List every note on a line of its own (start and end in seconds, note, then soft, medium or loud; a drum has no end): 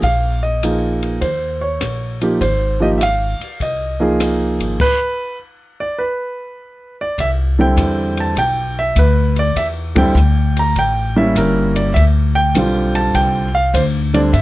0.02 1.17 A#1 medium
0.02 0.40 F5 medium
0.02 kick soft
0.02 ride medium
0.43 1.18 D#5 medium
0.63 1.22 F3 soft
0.63 1.23 A#3 soft
0.63 1.23 D#4 soft
0.63 1.23 G#4 soft
0.63 hi-hat pedal soft
0.63 ride medium
1.03 ride soft
1.21 1.77 D#2 medium
1.21 1.63 C5 medium
1.21 kick soft
1.21 ride soft
1.61 2.17 C#5 medium
1.81 2.37 A#1 medium
1.81 cross-stick medium
1.81 hi-hat pedal medium
1.81 ride medium
2.21 2.39 F3 medium
2.21 2.39 A#3 medium
2.21 2.39 D#4 soft
2.21 2.40 G4 medium
2.21 ride soft
2.41 3.37 G#1 medium
2.41 2.78 C5 medium
2.41 kick soft
2.41 ride medium
2.80 2.98 F3 medium
2.80 2.98 A#3 soft
2.80 2.99 D#4 soft
2.80 2.99 G4 medium
2.80 2.87 D#5 medium
2.98 3.01 E5 medium
2.98 hi-hat pedal medium
2.98 ride medium
3.03 3.57 F5 medium
3.40 muted upright bass stroke soft
3.40 ride soft
3.60 4.56 C2 medium
3.60 4.57 D#5 medium
3.60 kick soft
3.60 ride soft
4.00 4.75 F3 medium
4.00 4.76 A#3 medium
4.00 4.76 D#4 soft
4.00 4.76 G#4 medium
4.20 cross-stick medium
4.20 hi-hat pedal medium
4.20 ride medium
4.59 4.78 G#1 medium
4.59 ride soft
4.80 5.36 B4 loud
4.80 kick medium
4.80 crash medium
5.80 6.00 D5 medium
5.98 6.94 B4 medium
7.01 7.18 D5 medium
7.18 7.76 C2 medium
7.18 7.29 E5 medium
7.18 kick soft
7.18 ride medium
7.59 8.34 D3 medium
7.59 8.34 G3 soft
7.59 8.34 C4 medium
7.59 8.34 E4 medium
7.59 8.21 G5 medium
7.77 8.35 E2 medium
7.77 kick soft
7.77 hi-hat pedal medium
7.77 ride medium
8.17 8.39 A5 medium
8.17 ride soft
8.36 8.95 B1 medium
8.36 8.79 G5 medium
8.36 kick soft
8.36 ride medium
8.79 8.98 E5 medium
8.96 9.54 D2 medium
8.96 9.35 B4 medium
8.96 kick soft
8.96 hi-hat pedal medium
8.96 ride medium
9.36 9.56 D5 medium
9.36 ride soft
9.56 10.14 E2 medium
9.56 9.66 E5 medium
9.56 kick soft
9.56 ride medium
9.95 10.14 D3 medium
9.95 10.14 G3 medium
9.95 10.14 C4 medium
9.95 10.15 E4 medium
9.95 10.59 G5 medium
9.95 kick medium
9.95 ride medium
10.15 10.73 D2 medium
10.15 hi-hat pedal medium
10.57 10.78 A#5 medium
10.57 ride soft
10.76 11.34 A1 medium
10.76 11.15 G5 medium
10.76 kick soft
10.76 ride soft
11.16 11.91 G3 medium
11.16 11.91 A#3 medium
11.16 11.92 C#4 medium
11.16 11.92 E4 medium
11.16 11.35 E5 medium
11.35 11.93 G1 medium
11.35 11.74 A#4 medium
11.35 kick soft
11.35 hi-hat pedal medium
11.35 ride medium
11.76 11.94 D5 medium
11.76 ride soft
11.94 12.53 D2 medium
11.94 12.03 E5 medium
11.94 kick soft
11.94 ride medium
12.35 12.97 G5 loud
12.54 13.12 B1 medium
12.54 13.47 D3 medium
12.54 13.47 G3 medium
12.54 13.47 C4 medium
12.54 13.48 F4 medium
12.54 kick soft
12.54 hi-hat pedal medium
12.54 ride medium
12.95 13.13 A5 medium
12.95 ride soft
13.14 13.72 C2 medium
13.14 13.52 G5 medium
13.14 kick soft
13.14 ride medium
13.55 13.75 F5 medium
13.74 14.32 D2 medium
13.74 13.83 C5 medium
13.74 kick soft
13.74 hi-hat pedal medium
13.74 ride medium
14.14 14.31 D3 medium
14.14 14.32 G3 soft
14.14 14.32 C4 medium
14.14 14.32 D4 medium
14.14 14.19 D5 medium
14.14 ride soft
14.33 14.42 G2 medium
14.33 14.42 E5 medium
14.33 kick soft
14.33 ride medium